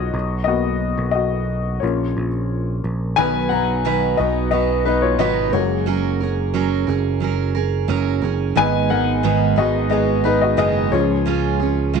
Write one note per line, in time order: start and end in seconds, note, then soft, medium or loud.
0.00 0.16 B3 soft
0.00 0.15 D#4 soft
0.00 0.16 F4 medium
0.00 0.43 F#4 medium
0.00 0.16 A#4 medium
0.00 0.16 C#5 medium
0.00 0.43 D#5 medium
0.00 0.16 F#5 loud
0.14 0.94 B1 medium
0.44 1.78 A#3 medium
0.44 1.78 B3 soft
0.44 1.11 F#4 medium
0.44 1.10 D#5 medium
0.98 1.78 B1 medium
1.11 1.79 F#4 medium
1.11 1.83 D#5 medium
1.80 2.14 A#1 medium
1.80 2.27 A#3 soft
1.80 2.27 C#4 soft
1.80 2.80 F4 medium
1.80 2.78 C#5 medium
2.17 2.80 A#1 medium
2.84 3.15 A#1 medium
3.16 4.15 B1 medium
3.16 3.51 B2 medium
3.16 5.49 D#3 medium
3.16 3.51 D#3 medium
3.16 5.49 F#3 soft
3.16 3.51 F#3 medium
3.16 5.50 B3 medium
3.16 3.51 B3 medium
3.16 3.50 D#4 medium
3.16 3.49 B4 medium
3.16 3.52 G#5 loud
3.49 3.85 B3 soft
3.49 3.85 D#4 soft
3.49 3.84 B4 medium
3.49 4.20 F#5 medium
3.49 4.15 A#5 medium
3.53 3.84 F#3 soft
3.85 4.18 B2 medium
3.85 4.19 D#3 medium
3.85 4.19 F#3 medium
3.85 4.19 B3 medium
3.85 4.18 D#4 medium
3.85 4.16 B4 medium
4.17 5.19 B1 medium
4.17 4.50 F#3 soft
4.17 4.51 B3 soft
4.17 4.52 D#4 soft
4.17 4.26 F#4 medium
4.17 4.52 B4 medium
4.17 4.25 D#5 medium
4.51 4.85 F#3 medium
4.51 4.86 B3 medium
4.51 4.85 D#4 medium
4.51 4.84 F#4 medium
4.51 4.84 B4 medium
4.51 4.86 D#5 medium
4.85 5.18 F#3 soft
4.85 5.19 B3 soft
4.85 5.19 D#4 medium
4.85 5.02 D#4 medium
4.85 5.19 B4 medium
4.85 5.03 B4 medium
5.02 5.19 F4 medium
5.02 5.20 C#5 medium
5.19 5.51 G#1 medium
5.19 5.53 B2 medium
5.19 5.53 D#3 medium
5.19 5.53 F#3 medium
5.19 5.53 B3 medium
5.19 5.54 D#4 medium
5.19 5.52 F#4 medium
5.19 5.52 B4 loud
5.19 5.54 D#5 medium
5.53 6.84 F#1 medium
5.53 5.98 F#3 soft
5.53 5.98 G#3 soft
5.53 5.99 A#3 medium
5.53 5.86 C#4 soft
5.53 6.85 F#4 medium
5.53 5.86 G#4 medium
5.53 5.87 A#4 medium
5.53 6.84 C#5 medium
5.86 6.20 F#3 medium
5.86 6.21 C#4 medium
5.86 6.21 G#4 medium
5.86 6.19 A#4 medium
6.20 6.53 C#4 soft
6.20 6.54 G#4 soft
6.20 6.54 A#4 medium
6.54 6.88 F#3 medium
6.54 6.88 C#4 medium
6.54 6.87 G#4 medium
6.54 6.86 A#4 medium
6.87 7.85 F#1 medium
6.87 7.20 C#4 soft
6.87 7.22 G#4 medium
6.87 7.21 A#4 medium
7.20 7.55 F#3 medium
7.20 7.55 C#4 medium
7.20 7.55 G#4 medium
7.20 7.53 A#4 medium
7.55 7.88 C#4 soft
7.55 7.88 G#4 medium
7.55 7.89 A#4 medium
7.88 8.20 F#1 medium
7.88 8.22 F#3 medium
7.88 8.23 C#4 medium
7.88 8.22 G#4 medium
7.88 8.20 A#4 medium
8.22 8.54 F#1 medium
8.22 8.57 C#4 soft
8.22 8.56 G#4 soft
8.22 8.56 A#4 medium
8.55 9.53 G#1 medium
8.55 8.90 G#2 medium
8.55 8.90 D#3 medium
8.55 9.53 D#3 medium
8.55 9.54 G#3 soft
8.55 8.90 G#3 medium
8.55 9.54 B3 medium
8.55 8.90 B3 medium
8.55 8.89 D#4 medium
8.55 8.88 G#4 medium
8.55 8.88 B4 medium
8.55 8.92 G#5 loud
8.89 9.23 G#3 soft
8.89 9.23 B3 medium
8.89 9.24 D#4 medium
8.89 9.23 G#4 medium
8.89 9.54 A#4 medium
8.89 9.60 F#5 medium
9.23 9.57 G#2 medium
9.23 9.58 D#3 medium
9.23 9.58 G#3 medium
9.23 9.57 B3 medium
9.23 9.56 D#4 medium
9.23 9.55 G#4 medium
9.56 10.55 G#1 medium
9.56 9.88 G#3 soft
9.56 9.90 B3 soft
9.56 9.91 D#4 medium
9.56 9.90 F#4 medium
9.56 9.91 G#4 medium
9.56 9.89 D#5 medium
9.90 10.24 G#3 medium
9.90 10.25 B3 medium
9.90 10.24 D#4 medium
9.90 10.23 G#4 medium
9.90 10.22 G#4 medium
9.90 10.26 D#5 medium
10.24 10.57 G#3 medium
10.24 10.57 B3 medium
10.24 10.58 D#4 medium
10.24 10.42 D#4 medium
10.24 10.58 G#4 medium
10.24 10.42 B4 medium
10.41 10.58 F#4 medium
10.41 10.56 D#5 medium
10.57 10.90 F#1 medium
10.57 10.92 G#2 medium
10.57 10.92 D#3 medium
10.57 10.92 G#3 medium
10.57 10.92 B3 medium
10.57 10.93 D#4 loud
10.57 10.90 G#4 medium
10.57 10.91 G#4 medium
10.57 10.93 D#5 medium
10.92 12.00 C#2 medium
10.92 12.00 F3 medium
10.92 12.00 G#3 soft
10.92 12.00 C#4 medium
10.92 11.26 C#4 medium
10.92 11.26 F4 medium
10.92 12.00 F4 medium
10.92 11.26 G#4 medium
10.92 12.00 C#5 medium
11.26 11.60 C#3 medium
11.26 11.60 G#3 medium
11.26 11.60 C#4 medium
11.26 11.60 F4 medium
11.26 11.58 G#4 medium
11.60 11.94 C#4 soft
11.60 11.94 F4 soft
11.60 11.94 G#4 medium
11.94 12.00 C#3 medium
11.94 12.00 G#3 medium
11.94 12.00 C#4 medium
11.94 12.00 F4 medium
11.94 12.00 G#4 loud